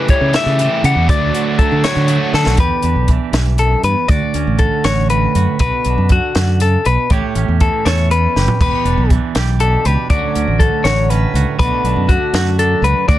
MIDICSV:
0, 0, Header, 1, 6, 480
1, 0, Start_track
1, 0, Key_signature, 2, "major"
1, 0, Tempo, 499584
1, 1056, Time_signature, 6, 3, 24, 8
1, 12670, End_track
2, 0, Start_track
2, 0, Title_t, "Clean electric guitar"
2, 0, Program_c, 0, 27
2, 98, Note_on_c, 0, 73, 69
2, 337, Note_off_c, 0, 73, 0
2, 344, Note_on_c, 0, 76, 80
2, 816, Note_off_c, 0, 76, 0
2, 820, Note_on_c, 0, 78, 69
2, 1052, Note_off_c, 0, 78, 0
2, 1056, Note_on_c, 0, 74, 87
2, 1525, Note_on_c, 0, 69, 69
2, 1536, Note_off_c, 0, 74, 0
2, 1767, Note_on_c, 0, 73, 73
2, 1771, Note_off_c, 0, 69, 0
2, 2253, Note_off_c, 0, 73, 0
2, 2257, Note_on_c, 0, 69, 71
2, 2494, Note_off_c, 0, 69, 0
2, 2498, Note_on_c, 0, 71, 75
2, 2979, Note_off_c, 0, 71, 0
2, 3451, Note_on_c, 0, 69, 65
2, 3688, Note_off_c, 0, 69, 0
2, 3692, Note_on_c, 0, 71, 71
2, 3923, Note_off_c, 0, 71, 0
2, 3923, Note_on_c, 0, 74, 80
2, 4410, Note_on_c, 0, 69, 66
2, 4414, Note_off_c, 0, 74, 0
2, 4655, Note_on_c, 0, 73, 73
2, 4657, Note_off_c, 0, 69, 0
2, 4896, Note_off_c, 0, 73, 0
2, 4900, Note_on_c, 0, 71, 71
2, 5374, Note_off_c, 0, 71, 0
2, 5385, Note_on_c, 0, 71, 89
2, 5866, Note_off_c, 0, 71, 0
2, 5878, Note_on_c, 0, 66, 71
2, 6352, Note_off_c, 0, 66, 0
2, 6356, Note_on_c, 0, 69, 61
2, 6592, Note_off_c, 0, 69, 0
2, 6593, Note_on_c, 0, 71, 68
2, 6835, Note_off_c, 0, 71, 0
2, 6835, Note_on_c, 0, 73, 82
2, 7308, Note_off_c, 0, 73, 0
2, 7312, Note_on_c, 0, 69, 69
2, 7546, Note_off_c, 0, 69, 0
2, 7546, Note_on_c, 0, 73, 73
2, 7787, Note_off_c, 0, 73, 0
2, 7795, Note_on_c, 0, 71, 64
2, 8267, Note_off_c, 0, 71, 0
2, 8279, Note_on_c, 0, 71, 81
2, 8753, Note_off_c, 0, 71, 0
2, 9227, Note_on_c, 0, 69, 68
2, 9468, Note_off_c, 0, 69, 0
2, 9468, Note_on_c, 0, 71, 66
2, 9702, Note_off_c, 0, 71, 0
2, 9706, Note_on_c, 0, 74, 81
2, 10178, Note_on_c, 0, 69, 73
2, 10185, Note_off_c, 0, 74, 0
2, 10416, Note_on_c, 0, 73, 80
2, 10421, Note_off_c, 0, 69, 0
2, 10663, Note_off_c, 0, 73, 0
2, 10663, Note_on_c, 0, 71, 69
2, 11126, Note_off_c, 0, 71, 0
2, 11138, Note_on_c, 0, 71, 91
2, 11613, Note_on_c, 0, 66, 73
2, 11617, Note_off_c, 0, 71, 0
2, 12093, Note_off_c, 0, 66, 0
2, 12097, Note_on_c, 0, 69, 68
2, 12335, Note_off_c, 0, 69, 0
2, 12337, Note_on_c, 0, 71, 74
2, 12567, Note_off_c, 0, 71, 0
2, 12571, Note_on_c, 0, 74, 95
2, 12670, Note_off_c, 0, 74, 0
2, 12670, End_track
3, 0, Start_track
3, 0, Title_t, "Overdriven electric guitar"
3, 0, Program_c, 1, 29
3, 0, Note_on_c, 1, 52, 80
3, 0, Note_on_c, 1, 57, 45
3, 0, Note_on_c, 1, 64, 55
3, 0, Note_on_c, 1, 67, 71
3, 306, Note_off_c, 1, 67, 0
3, 317, Note_on_c, 1, 67, 83
3, 320, Note_off_c, 1, 57, 0
3, 324, Note_off_c, 1, 64, 0
3, 328, Note_on_c, 1, 64, 83
3, 332, Note_off_c, 1, 52, 0
3, 332, Note_on_c, 1, 57, 83
3, 336, Note_on_c, 1, 52, 72
3, 341, Note_on_c, 1, 49, 70
3, 567, Note_off_c, 1, 52, 0
3, 570, Note_off_c, 1, 57, 0
3, 571, Note_on_c, 1, 52, 79
3, 578, Note_off_c, 1, 67, 0
3, 579, Note_off_c, 1, 64, 0
3, 581, Note_on_c, 1, 57, 76
3, 583, Note_on_c, 1, 64, 74
3, 590, Note_on_c, 1, 67, 85
3, 798, Note_off_c, 1, 67, 0
3, 809, Note_on_c, 1, 67, 68
3, 819, Note_off_c, 1, 49, 0
3, 819, Note_off_c, 1, 64, 0
3, 822, Note_off_c, 1, 57, 0
3, 823, Note_on_c, 1, 64, 52
3, 834, Note_on_c, 1, 57, 54
3, 1038, Note_off_c, 1, 67, 0
3, 1051, Note_off_c, 1, 57, 0
3, 1052, Note_on_c, 1, 50, 88
3, 1056, Note_off_c, 1, 52, 0
3, 1060, Note_on_c, 1, 54, 86
3, 1063, Note_off_c, 1, 64, 0
3, 1063, Note_on_c, 1, 57, 83
3, 1067, Note_on_c, 1, 62, 89
3, 1076, Note_on_c, 1, 66, 89
3, 1280, Note_off_c, 1, 66, 0
3, 1290, Note_off_c, 1, 62, 0
3, 1291, Note_on_c, 1, 66, 60
3, 1298, Note_off_c, 1, 57, 0
3, 1301, Note_on_c, 1, 62, 55
3, 1310, Note_on_c, 1, 57, 56
3, 1535, Note_off_c, 1, 50, 0
3, 1539, Note_off_c, 1, 54, 0
3, 1764, Note_off_c, 1, 66, 0
3, 1775, Note_off_c, 1, 62, 0
3, 1776, Note_on_c, 1, 66, 75
3, 1779, Note_off_c, 1, 57, 0
3, 1786, Note_on_c, 1, 62, 81
3, 1791, Note_on_c, 1, 57, 77
3, 1796, Note_on_c, 1, 54, 71
3, 1802, Note_on_c, 1, 50, 64
3, 1988, Note_off_c, 1, 54, 0
3, 1998, Note_off_c, 1, 57, 0
3, 2000, Note_on_c, 1, 54, 68
3, 2006, Note_off_c, 1, 62, 0
3, 2009, Note_on_c, 1, 57, 77
3, 2013, Note_off_c, 1, 66, 0
3, 2017, Note_on_c, 1, 62, 73
3, 2025, Note_on_c, 1, 66, 84
3, 2231, Note_off_c, 1, 66, 0
3, 2243, Note_on_c, 1, 66, 64
3, 2245, Note_off_c, 1, 62, 0
3, 2256, Note_on_c, 1, 62, 61
3, 2259, Note_off_c, 1, 57, 0
3, 2270, Note_off_c, 1, 50, 0
3, 2271, Note_on_c, 1, 57, 51
3, 2475, Note_off_c, 1, 54, 0
3, 2476, Note_off_c, 1, 66, 0
3, 2483, Note_off_c, 1, 62, 0
3, 2490, Note_off_c, 1, 57, 0
3, 12670, End_track
4, 0, Start_track
4, 0, Title_t, "Clean electric guitar"
4, 0, Program_c, 2, 27
4, 0, Note_on_c, 2, 52, 58
4, 0, Note_on_c, 2, 57, 53
4, 109, Note_off_c, 2, 57, 0
4, 113, Note_on_c, 2, 55, 63
4, 342, Note_on_c, 2, 49, 63
4, 564, Note_off_c, 2, 52, 0
4, 568, Note_on_c, 2, 52, 59
4, 579, Note_off_c, 2, 49, 0
4, 801, Note_off_c, 2, 55, 0
4, 812, Note_on_c, 2, 55, 58
4, 1025, Note_off_c, 2, 55, 0
4, 1047, Note_on_c, 2, 38, 70
4, 1076, Note_off_c, 2, 52, 0
4, 1286, Note_on_c, 2, 50, 58
4, 1543, Note_on_c, 2, 54, 62
4, 1769, Note_on_c, 2, 45, 62
4, 1988, Note_off_c, 2, 50, 0
4, 2000, Note_on_c, 2, 50, 56
4, 2013, Note_off_c, 2, 45, 0
4, 2261, Note_off_c, 2, 54, 0
4, 2476, Note_off_c, 2, 38, 0
4, 2479, Note_on_c, 2, 40, 64
4, 2488, Note_on_c, 2, 67, 63
4, 2737, Note_on_c, 2, 62, 45
4, 2969, Note_off_c, 2, 50, 0
4, 2973, Note_on_c, 2, 52, 57
4, 3211, Note_off_c, 2, 40, 0
4, 3219, Note_on_c, 2, 43, 51
4, 3458, Note_off_c, 2, 43, 0
4, 3462, Note_on_c, 2, 42, 50
4, 3702, Note_off_c, 2, 42, 0
4, 3711, Note_on_c, 2, 40, 56
4, 3908, Note_off_c, 2, 67, 0
4, 3910, Note_off_c, 2, 52, 0
4, 3931, Note_off_c, 2, 40, 0
4, 3934, Note_on_c, 2, 38, 67
4, 3941, Note_on_c, 2, 66, 62
4, 4179, Note_off_c, 2, 62, 0
4, 4183, Note_on_c, 2, 61, 54
4, 4406, Note_on_c, 2, 50, 62
4, 4661, Note_off_c, 2, 66, 0
4, 4665, Note_on_c, 2, 66, 58
4, 4890, Note_off_c, 2, 61, 0
4, 4899, Note_on_c, 2, 45, 59
4, 4903, Note_on_c, 2, 61, 52
4, 5138, Note_off_c, 2, 66, 0
4, 5149, Note_on_c, 2, 66, 55
4, 5355, Note_off_c, 2, 61, 0
4, 5359, Note_off_c, 2, 66, 0
4, 5381, Note_off_c, 2, 38, 0
4, 5383, Note_off_c, 2, 45, 0
4, 5387, Note_on_c, 2, 47, 70
4, 5397, Note_on_c, 2, 66, 66
4, 5641, Note_on_c, 2, 62, 49
4, 5857, Note_off_c, 2, 50, 0
4, 5867, Note_off_c, 2, 47, 0
4, 5871, Note_on_c, 2, 50, 65
4, 6101, Note_off_c, 2, 50, 0
4, 6113, Note_on_c, 2, 50, 54
4, 6350, Note_off_c, 2, 50, 0
4, 6356, Note_on_c, 2, 49, 56
4, 6586, Note_off_c, 2, 49, 0
4, 6590, Note_on_c, 2, 47, 57
4, 6805, Note_off_c, 2, 66, 0
4, 6806, Note_off_c, 2, 62, 0
4, 6829, Note_off_c, 2, 47, 0
4, 6838, Note_on_c, 2, 45, 69
4, 6840, Note_on_c, 2, 67, 62
4, 7074, Note_on_c, 2, 61, 50
4, 7311, Note_on_c, 2, 52, 64
4, 7548, Note_off_c, 2, 67, 0
4, 7552, Note_on_c, 2, 69, 50
4, 7773, Note_off_c, 2, 61, 0
4, 7777, Note_on_c, 2, 40, 51
4, 7784, Note_on_c, 2, 61, 49
4, 7794, Note_off_c, 2, 45, 0
4, 8030, Note_off_c, 2, 69, 0
4, 8040, Note_on_c, 2, 67, 50
4, 8234, Note_off_c, 2, 40, 0
4, 8237, Note_off_c, 2, 61, 0
4, 8240, Note_off_c, 2, 52, 0
4, 8245, Note_off_c, 2, 67, 0
4, 8269, Note_on_c, 2, 40, 72
4, 8283, Note_on_c, 2, 67, 60
4, 8507, Note_on_c, 2, 62, 53
4, 8741, Note_on_c, 2, 52, 64
4, 8987, Note_off_c, 2, 67, 0
4, 8998, Note_on_c, 2, 67, 55
4, 9221, Note_on_c, 2, 47, 56
4, 9223, Note_off_c, 2, 62, 0
4, 9227, Note_on_c, 2, 62, 54
4, 9458, Note_off_c, 2, 67, 0
4, 9470, Note_on_c, 2, 67, 51
4, 9674, Note_off_c, 2, 47, 0
4, 9674, Note_off_c, 2, 52, 0
4, 9678, Note_off_c, 2, 40, 0
4, 9679, Note_off_c, 2, 67, 0
4, 9703, Note_on_c, 2, 38, 69
4, 9710, Note_on_c, 2, 50, 61
4, 9722, Note_on_c, 2, 54, 57
4, 9723, Note_off_c, 2, 62, 0
4, 9727, Note_on_c, 2, 61, 61
4, 9735, Note_on_c, 2, 66, 67
4, 9941, Note_off_c, 2, 61, 0
4, 9952, Note_on_c, 2, 61, 52
4, 10175, Note_off_c, 2, 50, 0
4, 10187, Note_on_c, 2, 50, 65
4, 10433, Note_off_c, 2, 66, 0
4, 10437, Note_on_c, 2, 66, 63
4, 10655, Note_off_c, 2, 61, 0
4, 10661, Note_on_c, 2, 45, 59
4, 10667, Note_on_c, 2, 61, 56
4, 10910, Note_off_c, 2, 66, 0
4, 10914, Note_on_c, 2, 66, 55
4, 11114, Note_off_c, 2, 61, 0
4, 11137, Note_off_c, 2, 50, 0
4, 11140, Note_off_c, 2, 38, 0
4, 11140, Note_off_c, 2, 45, 0
4, 11145, Note_on_c, 2, 47, 74
4, 11150, Note_on_c, 2, 50, 64
4, 11152, Note_off_c, 2, 54, 0
4, 11156, Note_on_c, 2, 57, 63
4, 11166, Note_on_c, 2, 62, 59
4, 11169, Note_off_c, 2, 66, 0
4, 11172, Note_on_c, 2, 66, 74
4, 11386, Note_off_c, 2, 62, 0
4, 11389, Note_on_c, 2, 62, 57
4, 11616, Note_off_c, 2, 50, 0
4, 11621, Note_off_c, 2, 47, 0
4, 11628, Note_on_c, 2, 50, 70
4, 11865, Note_off_c, 2, 66, 0
4, 11869, Note_on_c, 2, 66, 62
4, 12094, Note_on_c, 2, 42, 62
4, 12097, Note_off_c, 2, 62, 0
4, 12101, Note_on_c, 2, 62, 54
4, 12327, Note_off_c, 2, 66, 0
4, 12339, Note_on_c, 2, 66, 54
4, 12543, Note_off_c, 2, 42, 0
4, 12546, Note_off_c, 2, 66, 0
4, 12577, Note_on_c, 2, 38, 74
4, 12582, Note_on_c, 2, 66, 75
4, 12670, Note_off_c, 2, 38, 0
4, 12670, Note_off_c, 2, 50, 0
4, 12670, Note_off_c, 2, 57, 0
4, 12670, Note_off_c, 2, 62, 0
4, 12670, Note_off_c, 2, 66, 0
4, 12670, End_track
5, 0, Start_track
5, 0, Title_t, "Fingered electric bass"
5, 0, Program_c, 3, 33
5, 202, Note_on_c, 3, 49, 78
5, 304, Note_off_c, 3, 49, 0
5, 442, Note_on_c, 3, 49, 76
5, 641, Note_off_c, 3, 49, 0
5, 805, Note_on_c, 3, 49, 84
5, 906, Note_off_c, 3, 49, 0
5, 920, Note_on_c, 3, 40, 80
5, 1023, Note_off_c, 3, 40, 0
5, 1050, Note_on_c, 3, 38, 108
5, 1245, Note_off_c, 3, 38, 0
5, 1650, Note_on_c, 3, 50, 78
5, 1749, Note_off_c, 3, 50, 0
5, 1885, Note_on_c, 3, 50, 74
5, 2084, Note_off_c, 3, 50, 0
5, 2245, Note_on_c, 3, 50, 84
5, 2347, Note_off_c, 3, 50, 0
5, 2367, Note_on_c, 3, 35, 84
5, 2468, Note_off_c, 3, 35, 0
5, 2479, Note_on_c, 3, 40, 90
5, 2584, Note_off_c, 3, 40, 0
5, 2722, Note_on_c, 3, 40, 78
5, 2826, Note_off_c, 3, 40, 0
5, 2841, Note_on_c, 3, 35, 75
5, 3042, Note_off_c, 3, 35, 0
5, 3197, Note_on_c, 3, 35, 85
5, 3594, Note_off_c, 3, 35, 0
5, 3681, Note_on_c, 3, 43, 71
5, 3786, Note_off_c, 3, 43, 0
5, 3930, Note_on_c, 3, 38, 98
5, 4032, Note_off_c, 3, 38, 0
5, 4174, Note_on_c, 3, 38, 77
5, 4274, Note_off_c, 3, 38, 0
5, 4297, Note_on_c, 3, 33, 85
5, 4493, Note_off_c, 3, 33, 0
5, 4657, Note_on_c, 3, 33, 85
5, 5047, Note_off_c, 3, 33, 0
5, 5141, Note_on_c, 3, 42, 72
5, 5239, Note_off_c, 3, 42, 0
5, 5380, Note_on_c, 3, 35, 91
5, 5479, Note_off_c, 3, 35, 0
5, 5625, Note_on_c, 3, 35, 75
5, 5722, Note_off_c, 3, 35, 0
5, 5743, Note_on_c, 3, 42, 84
5, 5938, Note_off_c, 3, 42, 0
5, 6104, Note_on_c, 3, 42, 88
5, 6492, Note_off_c, 3, 42, 0
5, 6591, Note_on_c, 3, 35, 75
5, 6686, Note_off_c, 3, 35, 0
5, 6826, Note_on_c, 3, 33, 98
5, 6923, Note_off_c, 3, 33, 0
5, 7065, Note_on_c, 3, 33, 74
5, 7162, Note_off_c, 3, 33, 0
5, 7191, Note_on_c, 3, 40, 77
5, 7383, Note_off_c, 3, 40, 0
5, 7548, Note_on_c, 3, 40, 86
5, 7934, Note_off_c, 3, 40, 0
5, 8033, Note_on_c, 3, 30, 78
5, 8127, Note_off_c, 3, 30, 0
5, 8269, Note_on_c, 3, 28, 95
5, 8365, Note_off_c, 3, 28, 0
5, 8502, Note_on_c, 3, 28, 79
5, 8601, Note_off_c, 3, 28, 0
5, 8624, Note_on_c, 3, 35, 83
5, 8818, Note_off_c, 3, 35, 0
5, 8988, Note_on_c, 3, 35, 85
5, 9373, Note_off_c, 3, 35, 0
5, 9468, Note_on_c, 3, 37, 80
5, 9564, Note_off_c, 3, 37, 0
5, 9702, Note_on_c, 3, 38, 97
5, 9800, Note_off_c, 3, 38, 0
5, 9949, Note_on_c, 3, 38, 79
5, 10044, Note_off_c, 3, 38, 0
5, 10065, Note_on_c, 3, 33, 84
5, 10257, Note_off_c, 3, 33, 0
5, 10419, Note_on_c, 3, 33, 88
5, 10806, Note_off_c, 3, 33, 0
5, 10894, Note_on_c, 3, 37, 74
5, 10993, Note_off_c, 3, 37, 0
5, 11139, Note_on_c, 3, 35, 110
5, 11236, Note_off_c, 3, 35, 0
5, 11375, Note_on_c, 3, 35, 82
5, 11473, Note_off_c, 3, 35, 0
5, 11492, Note_on_c, 3, 42, 88
5, 11687, Note_off_c, 3, 42, 0
5, 11849, Note_on_c, 3, 42, 87
5, 12236, Note_off_c, 3, 42, 0
5, 12318, Note_on_c, 3, 37, 83
5, 12420, Note_off_c, 3, 37, 0
5, 12573, Note_on_c, 3, 38, 103
5, 12669, Note_off_c, 3, 38, 0
5, 12670, End_track
6, 0, Start_track
6, 0, Title_t, "Drums"
6, 81, Note_on_c, 9, 42, 53
6, 85, Note_on_c, 9, 36, 68
6, 177, Note_off_c, 9, 42, 0
6, 181, Note_off_c, 9, 36, 0
6, 322, Note_on_c, 9, 42, 73
6, 329, Note_on_c, 9, 38, 97
6, 419, Note_off_c, 9, 42, 0
6, 425, Note_off_c, 9, 38, 0
6, 567, Note_on_c, 9, 42, 59
6, 663, Note_off_c, 9, 42, 0
6, 811, Note_on_c, 9, 42, 55
6, 907, Note_off_c, 9, 42, 0
6, 1047, Note_on_c, 9, 36, 111
6, 1050, Note_on_c, 9, 42, 80
6, 1144, Note_off_c, 9, 36, 0
6, 1146, Note_off_c, 9, 42, 0
6, 1293, Note_on_c, 9, 42, 55
6, 1389, Note_off_c, 9, 42, 0
6, 1526, Note_on_c, 9, 36, 66
6, 1527, Note_on_c, 9, 42, 58
6, 1622, Note_off_c, 9, 36, 0
6, 1623, Note_off_c, 9, 42, 0
6, 1766, Note_on_c, 9, 42, 78
6, 1773, Note_on_c, 9, 38, 97
6, 1862, Note_off_c, 9, 42, 0
6, 1869, Note_off_c, 9, 38, 0
6, 1998, Note_on_c, 9, 42, 62
6, 2094, Note_off_c, 9, 42, 0
6, 2247, Note_on_c, 9, 38, 50
6, 2343, Note_off_c, 9, 38, 0
6, 2367, Note_on_c, 9, 38, 68
6, 2463, Note_off_c, 9, 38, 0
6, 2473, Note_on_c, 9, 42, 77
6, 2481, Note_on_c, 9, 36, 90
6, 2569, Note_off_c, 9, 42, 0
6, 2577, Note_off_c, 9, 36, 0
6, 2714, Note_on_c, 9, 42, 47
6, 2810, Note_off_c, 9, 42, 0
6, 2959, Note_on_c, 9, 42, 52
6, 2963, Note_on_c, 9, 36, 65
6, 3055, Note_off_c, 9, 42, 0
6, 3059, Note_off_c, 9, 36, 0
6, 3202, Note_on_c, 9, 42, 65
6, 3209, Note_on_c, 9, 38, 92
6, 3298, Note_off_c, 9, 42, 0
6, 3305, Note_off_c, 9, 38, 0
6, 3441, Note_on_c, 9, 42, 51
6, 3537, Note_off_c, 9, 42, 0
6, 3684, Note_on_c, 9, 42, 51
6, 3780, Note_off_c, 9, 42, 0
6, 3925, Note_on_c, 9, 42, 73
6, 3930, Note_on_c, 9, 36, 99
6, 4021, Note_off_c, 9, 42, 0
6, 4026, Note_off_c, 9, 36, 0
6, 4170, Note_on_c, 9, 42, 50
6, 4266, Note_off_c, 9, 42, 0
6, 4406, Note_on_c, 9, 42, 51
6, 4413, Note_on_c, 9, 36, 63
6, 4502, Note_off_c, 9, 42, 0
6, 4510, Note_off_c, 9, 36, 0
6, 4652, Note_on_c, 9, 42, 70
6, 4659, Note_on_c, 9, 38, 95
6, 4748, Note_off_c, 9, 42, 0
6, 4755, Note_off_c, 9, 38, 0
6, 4898, Note_on_c, 9, 42, 60
6, 4994, Note_off_c, 9, 42, 0
6, 5142, Note_on_c, 9, 42, 54
6, 5238, Note_off_c, 9, 42, 0
6, 5374, Note_on_c, 9, 42, 79
6, 5381, Note_on_c, 9, 36, 92
6, 5470, Note_off_c, 9, 42, 0
6, 5477, Note_off_c, 9, 36, 0
6, 5616, Note_on_c, 9, 42, 57
6, 5712, Note_off_c, 9, 42, 0
6, 5854, Note_on_c, 9, 42, 57
6, 5861, Note_on_c, 9, 36, 69
6, 5950, Note_off_c, 9, 42, 0
6, 5957, Note_off_c, 9, 36, 0
6, 6100, Note_on_c, 9, 42, 70
6, 6106, Note_on_c, 9, 38, 94
6, 6196, Note_off_c, 9, 42, 0
6, 6203, Note_off_c, 9, 38, 0
6, 6343, Note_on_c, 9, 42, 56
6, 6439, Note_off_c, 9, 42, 0
6, 6585, Note_on_c, 9, 42, 54
6, 6681, Note_off_c, 9, 42, 0
6, 6822, Note_on_c, 9, 42, 76
6, 6827, Note_on_c, 9, 36, 99
6, 6918, Note_off_c, 9, 42, 0
6, 6923, Note_off_c, 9, 36, 0
6, 7066, Note_on_c, 9, 42, 55
6, 7162, Note_off_c, 9, 42, 0
6, 7306, Note_on_c, 9, 42, 49
6, 7310, Note_on_c, 9, 36, 69
6, 7402, Note_off_c, 9, 42, 0
6, 7406, Note_off_c, 9, 36, 0
6, 7551, Note_on_c, 9, 42, 67
6, 7558, Note_on_c, 9, 38, 91
6, 7647, Note_off_c, 9, 42, 0
6, 7654, Note_off_c, 9, 38, 0
6, 7794, Note_on_c, 9, 42, 56
6, 7890, Note_off_c, 9, 42, 0
6, 8036, Note_on_c, 9, 38, 51
6, 8132, Note_off_c, 9, 38, 0
6, 8149, Note_on_c, 9, 43, 64
6, 8245, Note_off_c, 9, 43, 0
6, 8269, Note_on_c, 9, 36, 107
6, 8273, Note_on_c, 9, 42, 77
6, 8273, Note_on_c, 9, 49, 77
6, 8365, Note_off_c, 9, 36, 0
6, 8369, Note_off_c, 9, 42, 0
6, 8369, Note_off_c, 9, 49, 0
6, 8509, Note_on_c, 9, 42, 49
6, 8605, Note_off_c, 9, 42, 0
6, 8747, Note_on_c, 9, 36, 70
6, 8747, Note_on_c, 9, 42, 51
6, 8843, Note_off_c, 9, 36, 0
6, 8843, Note_off_c, 9, 42, 0
6, 8983, Note_on_c, 9, 42, 72
6, 8990, Note_on_c, 9, 38, 100
6, 9079, Note_off_c, 9, 42, 0
6, 9086, Note_off_c, 9, 38, 0
6, 9224, Note_on_c, 9, 42, 59
6, 9321, Note_off_c, 9, 42, 0
6, 9466, Note_on_c, 9, 42, 55
6, 9562, Note_off_c, 9, 42, 0
6, 9704, Note_on_c, 9, 36, 105
6, 9704, Note_on_c, 9, 42, 80
6, 9800, Note_off_c, 9, 36, 0
6, 9800, Note_off_c, 9, 42, 0
6, 9949, Note_on_c, 9, 42, 57
6, 10045, Note_off_c, 9, 42, 0
6, 10183, Note_on_c, 9, 36, 70
6, 10188, Note_on_c, 9, 42, 59
6, 10279, Note_off_c, 9, 36, 0
6, 10284, Note_off_c, 9, 42, 0
6, 10424, Note_on_c, 9, 42, 81
6, 10431, Note_on_c, 9, 38, 93
6, 10520, Note_off_c, 9, 42, 0
6, 10527, Note_off_c, 9, 38, 0
6, 10668, Note_on_c, 9, 42, 59
6, 10764, Note_off_c, 9, 42, 0
6, 10909, Note_on_c, 9, 42, 50
6, 11005, Note_off_c, 9, 42, 0
6, 11140, Note_on_c, 9, 36, 101
6, 11144, Note_on_c, 9, 42, 77
6, 11236, Note_off_c, 9, 36, 0
6, 11240, Note_off_c, 9, 42, 0
6, 11383, Note_on_c, 9, 42, 55
6, 11479, Note_off_c, 9, 42, 0
6, 11615, Note_on_c, 9, 36, 71
6, 11617, Note_on_c, 9, 42, 59
6, 11711, Note_off_c, 9, 36, 0
6, 11713, Note_off_c, 9, 42, 0
6, 11854, Note_on_c, 9, 42, 75
6, 11861, Note_on_c, 9, 38, 101
6, 11950, Note_off_c, 9, 42, 0
6, 11957, Note_off_c, 9, 38, 0
6, 12097, Note_on_c, 9, 42, 54
6, 12193, Note_off_c, 9, 42, 0
6, 12340, Note_on_c, 9, 42, 55
6, 12436, Note_off_c, 9, 42, 0
6, 12573, Note_on_c, 9, 36, 117
6, 12577, Note_on_c, 9, 42, 75
6, 12669, Note_off_c, 9, 36, 0
6, 12670, Note_off_c, 9, 42, 0
6, 12670, End_track
0, 0, End_of_file